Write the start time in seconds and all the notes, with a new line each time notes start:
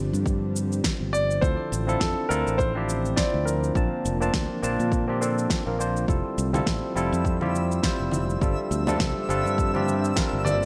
Already playing: D3 F3 G3 C4 D5
0.13 G2, cabasa
0.26 kick, cabasa
0.56 cabasa
0.72 cabasa
0.84 kick, snare, cabasa
1.01 G1
1.13 D5, cabasa
1.31 cabasa
1.41 D2 D3 F3 C4 D4 E4 F4 A4 C5, kick, cabasa
1.72 A1, cabasa
1.87 C4 D4 E4 F4 A4, cabasa
2.00 F2 A4, kick, snare, cabasa
2.29 D2 C4 D4 E4 F4 A4 A#4, cabasa
2.47 A1, cabasa
2.58 C5, kick, cabasa
2.75 C4 D4 E4 F4 G4
2.89 cabasa
3.05 cabasa
3.16 C4 D4 E4 F4 C5 D5, kick, snare, cabasa
3.34 D2
3.45 A#4, cabasa
3.64 cabasa
3.75 A#1 A#3 C4 D4 F4 A5, kick, cabasa
4.05 F1, cabasa
4.20 A#3 C4 D4 F4 A5, cabasa
4.34 D2, kick, snare, cabasa
4.62 A#1 A#3 C4 D4 F4 A5, cabasa
4.79 A#2, cabasa
4.92 kick, cabasa
5.07 A#3 C4 D4 F4 G4
5.21 A#3 C4 D4 F4 A4, cabasa
5.38 cabasa
5.50 kick, snare, cabasa
5.66 A#1 A#3 C4 D4 F4 A#4
5.79 A#3 C4 D4 F4 C5, cabasa
5.97 cabasa
6.08 F1 G3 C4 E4 F4 A4 E5, kick, cabasa
6.38 C2, cabasa
6.53 G3 C4 E4 F4 A4, high conga, cabasa
6.67 A1, kick, snare, cabasa
6.95 F1 G3 C4 E4 F4 A4, cabasa
7.12 F2, cabasa
7.25 kick, cabasa
7.41 G3 C4 E4 F4 G4, high conga
7.55 cabasa
7.72 cabasa
7.83 G3 C4 E4 F4 C5, kick, snare, cabasa
8.00 F1
8.11 high conga, cabasa
8.30 cabasa
8.41 G1 D3 F3 G3 C4 D4 F4 A4, kick, cabasa
8.71 D2, cabasa
8.87 G3 C4 D4 F4 A4, high conga, cabasa
9.00 C2, kick, snare, cabasa
9.28 G1 G3 C4 D4 F4 A4, cabasa
9.45 G2, cabasa
9.58 kick, cabasa
9.74 G3 C4 D4 F4 G4, high conga
9.88 cabasa
10.05 cabasa
10.15 G3 C4 D4 F4 A#4, kick, snare, cabasa
10.33 G1
10.45 D5, high conga, cabasa